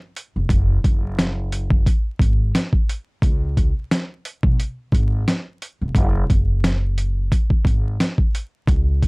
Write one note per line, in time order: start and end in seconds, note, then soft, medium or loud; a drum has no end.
0.16 closed hi-hat medium
0.36 0.48 F1 medium
0.49 0.79 F#1 loud
0.49 kick loud
0.49 closed hi-hat medium
0.84 1.82 F#1 loud
0.84 kick loud
0.84 closed hi-hat medium
1.19 snare loud
1.19 closed hi-hat loud
1.52 closed hi-hat medium
1.70 kick loud
1.86 kick loud
1.86 closed hi-hat medium
2.19 2.50 G#1 medium
2.19 kick medium
2.19 closed hi-hat medium
2.55 snare loud
2.55 closed hi-hat medium
2.73 kick medium
2.89 closed hi-hat medium
3.22 3.70 C#2 loud
3.22 kick loud
3.22 closed hi-hat medium
3.57 kick loud
3.57 closed hi-hat medium
3.91 snare loud
3.91 closed hi-hat loud
4.25 closed hi-hat medium
4.43 4.56 B1 medium
4.43 kick loud
4.60 closed hi-hat medium
4.92 5.22 G#1 medium
4.92 kick loud
4.92 closed hi-hat medium
5.28 snare loud
5.28 closed hi-hat medium
5.62 closed hi-hat medium
5.82 5.93 F1 medium
5.95 6.25 F#1 loud
5.95 kick loud
5.95 closed hi-hat medium
6.30 7.28 F#1 loud
6.30 kick loud
6.30 closed hi-hat medium
6.64 snare loud
6.64 closed hi-hat loud
6.98 closed hi-hat medium
7.32 kick loud
7.32 closed hi-hat medium
7.50 kick medium
7.65 7.95 G#1 medium
7.65 kick medium
7.65 closed hi-hat medium
8.00 snare loud
8.00 closed hi-hat medium
8.18 kick medium
8.35 closed hi-hat medium
8.67 9.08 C#2 loud
8.67 kick loud
8.67 closed hi-hat medium
9.03 kick loud
9.03 closed hi-hat medium